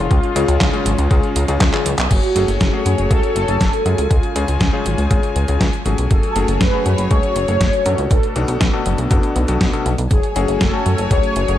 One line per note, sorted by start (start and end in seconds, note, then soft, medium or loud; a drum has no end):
0.00 0.33 C#3 medium
0.00 0.33 G#3 medium
0.00 0.33 C#4 medium
0.00 0.33 F4 medium
0.00 1.57 F4 loud
0.00 0.33 G#4 medium
0.11 0.20 C#2 loud
0.11 2.09 G#3 medium
0.11 2.09 C#4 medium
0.11 2.09 F4 medium
0.11 kick loud
0.11 closed hi-hat medium
0.23 closed hi-hat soft
0.36 0.45 C#2 medium
0.36 0.70 C#3 loud
0.36 0.70 G#3 medium
0.36 0.70 C#4 medium
0.36 0.70 F4 medium
0.36 0.70 G#4 loud
0.36 closed hi-hat loud
0.48 0.58 C#2 medium
0.48 closed hi-hat medium
0.61 0.70 C#2 loud
0.61 kick loud
0.61 snare loud
0.61 clap loud
0.61 closed hi-hat medium
0.73 1.08 C#3 loud
0.73 1.08 G#3 medium
0.73 1.08 C#4 medium
0.73 1.08 F4 medium
0.73 1.08 G#4 loud
0.73 closed hi-hat soft
0.86 0.95 G#1 medium
0.86 closed hi-hat loud
0.98 1.08 C#2 medium
0.98 closed hi-hat medium
1.11 1.20 C#2 loud
1.11 1.45 C#3 medium
1.11 1.45 G#3 medium
1.11 1.45 C#4 medium
1.11 1.45 F4 medium
1.11 1.45 G#4 loud
1.11 kick loud
1.11 closed hi-hat medium
1.23 closed hi-hat soft
1.36 1.45 C#2 medium
1.36 closed hi-hat medium
1.48 1.58 C#2 medium
1.48 1.70 C#3 medium
1.48 1.70 G#3 medium
1.48 1.70 C#4 medium
1.48 1.70 F4 medium
1.48 1.70 G#4 loud
1.48 closed hi-hat medium
1.61 1.70 C#2 loud
1.61 kick loud
1.61 snare loud
1.61 clap loud
1.61 closed hi-hat medium
1.73 1.92 C#3 loud
1.73 1.92 G#3 medium
1.73 1.92 C#4 medium
1.73 1.92 F4 medium
1.73 1.92 G#4 loud
1.73 clap medium
1.73 closed hi-hat soft
1.86 1.95 C#2 medium
1.86 closed hi-hat loud
1.98 2.08 B1 medium
1.98 clap loud
1.98 closed hi-hat medium
2.11 2.20 F#1 medium
2.11 4.09 F#3 medium
2.11 4.09 A3 medium
2.11 2.62 F#4 loud
2.11 4.09 F#4 medium
2.11 4.09 C#5 medium
2.11 8.07 G#5 medium
2.11 kick loud
2.11 closed hi-hat medium
2.11 crash medium
2.23 closed hi-hat soft
2.36 2.45 F#1 medium
2.36 2.70 A3 medium
2.36 2.70 C#4 medium
2.36 2.70 F#4 medium
2.36 2.70 G#4 loud
2.36 closed hi-hat medium
2.48 2.58 F#1 medium
2.48 closed hi-hat medium
2.61 2.70 F#1 loud
2.61 2.84 G#4 loud
2.61 kick loud
2.61 snare loud
2.61 closed hi-hat medium
2.73 3.08 A3 medium
2.73 3.08 C#4 medium
2.73 3.08 F#4 medium
2.73 3.08 G#4 loud
2.86 2.95 F#2 medium
2.86 3.12 G#4 loud
2.86 closed hi-hat medium
2.98 3.08 F#1 medium
2.98 closed hi-hat soft
3.11 3.20 C#2 loud
3.11 3.45 A3 medium
3.11 3.45 C#4 medium
3.11 3.45 F#4 medium
3.11 3.45 G#4 medium
3.11 3.35 A4 loud
3.11 kick loud
3.11 closed hi-hat medium
3.23 closed hi-hat soft
3.36 3.45 F#1 medium
3.36 4.13 A4 loud
3.36 closed hi-hat medium
3.48 3.58 F#1 medium
3.48 3.67 A3 medium
3.48 3.66 C#4 medium
3.48 3.66 F#4 medium
3.48 3.67 G#4 medium
3.48 closed hi-hat medium
3.61 3.70 F#1 loud
3.61 kick loud
3.61 snare loud
3.61 closed hi-hat medium
3.73 closed hi-hat soft
3.86 3.95 F#2 medium
3.86 4.33 C#3 medium
3.86 4.33 G#3 medium
3.86 4.33 C#4 medium
3.86 4.33 F4 medium
3.86 4.33 G#4 medium
3.86 closed hi-hat medium
3.98 4.08 C#2 medium
3.98 closed hi-hat medium
4.11 4.20 C#2 loud
4.11 6.09 C#4 medium
4.11 6.09 F4 medium
4.11 4.57 F4 medium
4.11 kick loud
4.11 closed hi-hat medium
4.23 closed hi-hat soft
4.36 4.45 C#2 medium
4.36 4.70 C#3 medium
4.36 4.70 G#3 medium
4.36 4.70 C#4 medium
4.36 4.70 F4 medium
4.36 4.70 G#4 loud
4.36 closed hi-hat medium
4.48 4.58 C#2 medium
4.48 closed hi-hat soft
4.61 4.70 C#2 loud
4.61 kick loud
4.61 snare loud
4.61 closed hi-hat medium
4.73 5.08 C#3 medium
4.73 5.08 G#3 medium
4.73 5.08 C#4 medium
4.73 5.08 F4 medium
4.73 5.08 G#4 loud
4.86 4.95 G#1 medium
4.86 closed hi-hat medium
4.98 5.08 C#2 medium
4.98 closed hi-hat medium
5.11 5.20 G#1 loud
5.11 5.45 C#3 medium
5.11 5.45 G#3 medium
5.11 5.45 C#4 medium
5.11 5.45 F4 medium
5.11 5.45 G#4 loud
5.11 kick loud
5.11 closed hi-hat medium
5.23 closed hi-hat soft
5.36 5.45 C#2 medium
5.36 closed hi-hat medium
5.48 5.58 C#2 medium
5.48 5.66 C#3 medium
5.48 5.66 G#3 medium
5.48 5.66 C#4 medium
5.48 5.66 F4 medium
5.48 5.66 G#4 medium
5.48 closed hi-hat soft
5.61 5.70 C#2 loud
5.61 kick loud
5.61 snare loud
5.61 closed hi-hat medium
5.73 closed hi-hat soft
5.86 5.95 G#1 medium
5.86 6.33 A3 medium
5.86 6.33 C#4 medium
5.86 6.33 F#4 medium
5.86 6.33 G#4 medium
5.86 closed hi-hat medium
5.98 6.08 B1 medium
5.98 closed hi-hat medium
6.11 6.20 F#1 loud
6.11 8.09 F#3 medium
6.11 10.07 A3 medium
6.11 8.09 F#4 medium
6.11 6.62 A4 loud
6.11 8.09 C#5 medium
6.11 kick loud
6.11 closed hi-hat medium
6.23 closed hi-hat soft
6.36 6.45 F#1 medium
6.36 6.70 A3 medium
6.36 6.70 C#4 medium
6.36 6.70 F#4 medium
6.36 6.70 G#4 loud
6.36 closed hi-hat medium
6.48 6.58 F#1 medium
6.48 closed hi-hat soft
6.61 6.70 F#1 loud
6.61 7.12 B4 loud
6.61 kick loud
6.61 snare loud
6.61 closed hi-hat medium
6.73 7.08 A3 medium
6.73 7.08 C#4 medium
6.73 7.08 F#4 medium
6.73 7.08 G#4 loud
6.86 6.95 F#2 medium
6.86 closed hi-hat medium
6.98 7.08 F#1 medium
6.98 closed hi-hat soft
7.11 7.20 C#2 loud
7.11 7.45 A3 medium
7.11 7.45 C#4 medium
7.11 7.45 F#4 medium
7.11 7.45 G#4 loud
7.11 7.35 C#5 loud
7.11 kick loud
7.11 closed hi-hat medium
7.23 closed hi-hat soft
7.36 7.45 F#1 medium
7.36 8.13 C#5 loud
7.36 closed hi-hat medium
7.48 7.58 F#1 medium
7.48 7.67 A3 medium
7.48 7.67 C#4 medium
7.48 7.67 F#4 medium
7.48 7.67 G#4 medium
7.48 closed hi-hat soft
7.61 7.70 F#1 loud
7.61 kick loud
7.61 snare loud
7.61 closed hi-hat medium
7.73 closed hi-hat soft
7.86 7.95 F#2 medium
7.86 8.33 B2 medium
7.86 8.33 B3 medium
7.86 8.33 D4 medium
7.86 8.33 F#4 medium
7.86 8.33 A4 medium
7.86 closed hi-hat medium
7.98 8.08 C#2 medium
7.98 closed hi-hat soft
8.11 8.20 B1 loud
8.11 10.09 B3 medium
8.11 10.09 D4 medium
8.11 8.57 A4 medium
8.11 kick loud
8.11 closed hi-hat medium
8.23 closed hi-hat soft
8.36 8.45 B1 medium
8.36 8.70 B2 medium
8.36 8.70 B3 medium
8.36 8.70 D4 medium
8.36 8.70 F#4 medium
8.36 8.70 A4 loud
8.36 closed hi-hat medium
8.48 8.58 B1 medium
8.48 closed hi-hat soft
8.61 8.70 B1 medium
8.61 kick loud
8.61 snare loud
8.61 closed hi-hat medium
8.73 9.08 B2 medium
8.73 9.08 B3 medium
8.73 9.08 D4 medium
8.73 9.08 F#4 medium
8.73 9.08 A4 loud
8.86 8.95 F#1 medium
8.86 closed hi-hat medium
8.98 9.08 B1 medium
8.98 closed hi-hat soft
9.11 9.20 F#1 medium
9.11 9.45 B2 medium
9.11 9.45 B3 medium
9.11 9.45 D4 medium
9.11 9.45 F#4 medium
9.11 9.45 A4 medium
9.11 kick loud
9.11 closed hi-hat medium
9.23 closed hi-hat soft
9.36 9.45 B1 medium
9.36 closed hi-hat medium
9.48 9.58 B1 medium
9.48 9.70 B2 medium
9.48 9.70 B3 medium
9.48 9.70 D4 medium
9.48 9.70 F#4 medium
9.48 9.70 A4 loud
9.48 closed hi-hat soft
9.61 9.70 B1 medium
9.61 kick loud
9.61 snare loud
9.61 closed hi-hat medium
9.73 9.92 B2 medium
9.73 9.92 B3 medium
9.73 9.92 D4 medium
9.73 9.92 F#4 medium
9.73 9.92 A4 loud
9.73 closed hi-hat soft
9.86 9.95 B1 medium
9.86 closed hi-hat medium
9.98 10.08 B1 medium
9.98 closed hi-hat soft
10.11 10.20 F#1 medium
10.11 11.58 F#3 medium
10.11 11.58 A3 medium
10.11 11.58 F#4 medium
10.11 10.62 G#4 loud
10.11 11.58 C#5 medium
10.11 11.58 G#5 medium
10.11 kick loud
10.11 closed hi-hat medium
10.23 closed hi-hat soft
10.36 10.45 F#1 medium
10.36 10.70 A3 medium
10.36 10.70 C#4 medium
10.36 10.70 F#4 medium
10.36 10.70 G#4 loud
10.36 closed hi-hat medium
10.48 10.58 F#1 medium
10.48 closed hi-hat soft
10.61 10.70 F#1 loud
10.61 11.12 A4 loud
10.61 kick loud
10.61 snare loud
10.61 closed hi-hat medium
10.73 11.08 A3 medium
10.73 11.08 C#4 medium
10.73 11.08 F#4 medium
10.73 11.08 G#5 loud
10.86 10.95 F#2 medium
10.86 closed hi-hat medium
10.98 11.08 F#1 medium
10.98 closed hi-hat soft
11.11 11.20 C#2 loud
11.11 11.45 A3 medium
11.11 11.45 C#4 medium
11.11 11.45 F#4 medium
11.11 11.45 G#4 medium
11.11 11.35 C#5 loud
11.11 kick loud
11.11 closed hi-hat medium
11.23 closed hi-hat soft
11.36 11.45 F#1 medium
11.36 11.58 C#5 loud
11.36 closed hi-hat medium
11.48 11.58 F#1 medium
11.48 11.58 A3 medium
11.48 11.58 C#4 medium
11.48 11.58 F#4 medium
11.48 11.58 G#4 medium
11.48 closed hi-hat soft